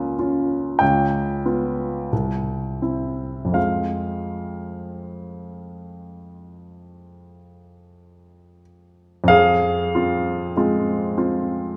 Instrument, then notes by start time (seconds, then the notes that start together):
grand piano
Already playing: C#2 A#3 C#4 F4 G#5
0.19 C#4 F4
0.79 C#2 G5
1.45 B3 F4
2.13 C2
2.82 C4 E4
3.45 F2
3.53 G#3 C4 F4 F5
9.24 F2
9.28 G#4 F5
9.95 C4 F4
10.57 G#3 C4 F4
11.18 C4 F4